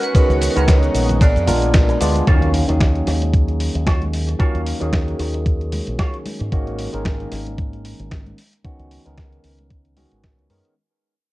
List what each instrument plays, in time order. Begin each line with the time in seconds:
Already playing: analog synth pad B3 D#5 F#5 C#6, clean electric guitar C#4 D#4 F#4 B4
0.03 vibraphone B4, closed hi-hat, shaker
0.15 tine electric piano D#3 G#3 B3 C#4 F#4, muted fingered electric bass stroke, kick, closed hi-hat, ride, shaker
0.30 fingered electric bass C#2, vibraphone C#5, closed hi-hat, shaker
0.41 vibraphone B4, open hi-hat, shaker
0.51 vibraphone A#4
0.55 fingered electric bass C#2, tine electric piano D#3 G#3 B3 C#4 A#5, clean electric guitar C#4 D#4 F#4 B4, closed hi-hat, shaker
0.60 vibraphone B4
0.68 vibraphone C#5, kick, snare, closed hi-hat, ride, shaker
0.83 closed hi-hat, shaker
0.94 fingered electric bass A#1, muted clean electric guitar stroke, open hi-hat, shaker
1.09 closed hi-hat, high conga, low conga, shaker
1.21 clean electric guitar B3 D4 G#4 A#4, vibraphone D5, kick, closed hi-hat, ride, shaker
1.36 fingered electric bass F2, closed hi-hat, shaker
1.47 fingered electric bass A#1, tine electric piano G#3 B3 D4 F4 A#4, open hi-hat, high conga, low conga, shaker
1.62 closed hi-hat, shaker
1.74 kick, snare, closed hi-hat, ride, shaker
1.89 muted clean electric guitar stroke, closed hi-hat, shaker
2.00 fingered electric bass D2, tine electric piano G#3 B3 D4 F4 D5, muted clean electric guitar stroke, open hi-hat, high conga, shaker
2.16 closed hi-hat, shaker
2.27 fingered electric bass D#2, tine electric piano D#3 F#3 A#3 C#4 F5, clean electric guitar F4 F#4 C#5, kick, closed hi-hat, impact
2.42 closed hi-hat
2.54 open hi-hat
2.68 fingered electric bass D#2, tine electric piano D#3 F#3 A#3 C#4 G#4, muted clean electric guitar stroke, closed hi-hat
2.80 muted clean electric guitar stroke, kick, snare, closed hi-hat
2.95 closed hi-hat
3.07 fingered electric bass D#2, muted clean electric guitar stroke, snare, open hi-hat
3.21 muted clean electric guitar stroke, closed hi-hat, high conga
3.34 kick, closed hi-hat
3.48 closed hi-hat
3.60 open hi-hat
3.75 fingered electric bass D#2, closed hi-hat
3.86 clean electric guitar F4 F#4 C#5, kick, snare, closed hi-hat
4.02 closed hi-hat, high conga
4.13 muted clean electric guitar stroke, open hi-hat
4.28 muted clean electric guitar stroke, closed hi-hat
4.39 tine electric piano D#3 F#3 A#3 C#4 F5, clean electric guitar F4 F#4 C#5, muted fingered electric bass stroke, kick, closed hi-hat
4.54 fingered electric bass D#2, closed hi-hat
4.67 open hi-hat
4.80 fingered electric bass D#2, tine electric piano D#3 F#3 A#3 C#4 G#4, muted clean electric guitar stroke, closed hi-hat
4.92 muted clean electric guitar stroke, kick, snare, closed hi-hat
5.08 closed hi-hat
5.19 fingered electric bass D#2, muted clean electric guitar stroke, open hi-hat
5.34 muted clean electric guitar stroke, closed hi-hat
5.46 kick, closed hi-hat
5.61 closed hi-hat
5.72 open hi-hat, high conga, low conga
5.87 fingered electric bass A#1, closed hi-hat
5.98 clean electric guitar F4 F#4 C#5, kick, snare, closed hi-hat
6.14 closed hi-hat
6.25 muted clean electric guitar stroke, open hi-hat, high conga
6.40 fingered electric bass G#2, muted clean electric guitar stroke, closed hi-hat
6.52 fingered electric bass G#1, tine electric piano D#3 G#3 A#3 C#4 F#4, kick, closed hi-hat
6.67 closed hi-hat
6.79 open hi-hat
6.93 fingered electric bass G#1, tine electric piano D#3 G#3 A#3 C#4 A#4, closed hi-hat
7.05 kick, snare, closed hi-hat
7.20 closed hi-hat
7.32 fingered electric bass G#1, snare, open hi-hat
7.47 closed hi-hat, high conga
7.58 kick, closed hi-hat
7.73 closed hi-hat
7.85 open hi-hat
8.00 fingered electric bass G#1, closed hi-hat
8.11 kick, snare, closed hi-hat
8.26 closed hi-hat, high conga
8.38 open hi-hat
8.53 closed hi-hat
8.64 tine electric piano D#3 G#3 B3 C#4 F#4, muted fingered electric bass stroke, kick, closed hi-hat
8.79 fingered electric bass C#2, closed hi-hat
8.91 open hi-hat
9.04 fingered electric bass C#2, tine electric piano D#3 G#3 B3 C#4 A#4, closed hi-hat
9.17 kick, snare, closed hi-hat
9.32 closed hi-hat
9.44 fingered electric bass C#2, open hi-hat
9.59 closed hi-hat, high conga
9.70 kick, closed hi-hat
9.85 closed hi-hat
9.96 tine electric piano D#3 G#3 B3 C#4 F#4, open hi-hat, high conga, low conga
10.12 fingered electric bass G#1, closed hi-hat
10.23 kick, snare, closed hi-hat
10.39 fingered electric bass C#2, closed hi-hat
10.49 fingered electric bass F#2, tine electric piano D#3 G#3 B3 C#4 A#4, open hi-hat, high conga
10.65 closed hi-hat